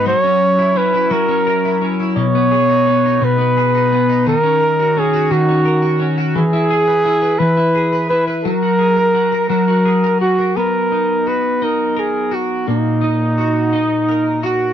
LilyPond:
<<
  \new Staff \with { instrumentName = "Flugelhorn" } { \time 6/8 \key b \major \tempo 4. = 57 cis''4 b'8 ais'4 r8 | cis''4. b'4. | ais'4 gis'8 fis'4 r8 | gis'4. b'4 b'8 |
ais'4. ais'4 fis'8 | ais'4 b'8 ais'8 gis'8 fis'8 | dis'2~ dis'8 fis'8 | }
  \new Staff \with { instrumentName = "Clean electric guitar" } { \time 6/8 \key b \major fis16 cis'8 e'16 cis'16 e'16 fis16 cis'16 ais'16 e'16 cis'16 e'16 | b,16 b16 gis'16 dis'16 b16 dis'16 b,16 b16 gis'16 dis'16 b16 dis'16 | dis16 cis'16 ais'16 fis'16 cis'16 fis'16 dis16 cis'16 ais'16 fis'16 cis'16 fis'16 | e16 e'16 gis'16 b'16 e'16 b'16 e16 e'16 gis'16 b'16 e'16 b'16 |
fis16 fis'16 gis'16 ais'16 fis'16 ais'16 fis16 fis'16 gis'16 ais'16 fis'16 ais'16 | b8 dis'8 fis'8 dis'8 ais'8 fis'8 | ais,8 dis'8 fis'8 dis'8 ais'8 fis'8 | }
>>